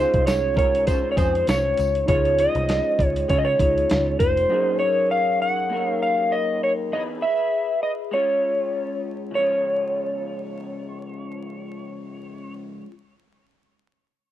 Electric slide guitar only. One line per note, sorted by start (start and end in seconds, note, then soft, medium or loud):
0.00 0.26 C5 medium
0.27 0.55 C#5 medium
0.58 0.87 C#5 medium
0.87 1.11 C5 medium
1.11 1.18 C#5 medium
1.18 1.49 C5 medium
1.49 2.07 C#5 loud
2.09 2.40 C#5 loud
2.40 3.06 D#5 loud
3.06 3.30 C#5 loud
3.30 3.38 C#5 medium
3.39 3.46 D#5 medium
3.45 4.19 C#5 loud
4.19 4.79 C5 loud
4.79 5.08 C#5 loud
5.11 5.41 F5 loud
5.42 5.86 F#5 loud
5.86 6.02 F5 loud
6.02 6.33 F5 loud
6.32 6.63 D#5 loud
6.64 6.72 C#5 loud
6.93 7.01 D#5 loud
7.22 7.82 E5 loud
7.83 7.91 D#5 medium
8.14 9.00 C#5 medium
9.35 12.53 C#5 medium